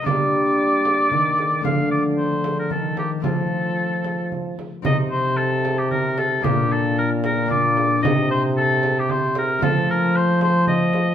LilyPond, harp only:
<<
  \new Staff \with { instrumentName = "Harp" } { \time 3/4 \key c \dorian \tempo 4 = 113 <bes d' g'>2. | <a d' f'>2. | <a c' f'>2. | <c' ees'>2. |
<bes d' f'>2 <bes d' f'>4 | <c' ees'>2. | <a c' f'>2. | }
  \new Staff \with { instrumentName = "Harp" } { \clef bass \time 3/4 \key c \dorian g2 ees4 | f2 ees4 | f2. | c2. |
bes,2. | c2. | f2. | }
>>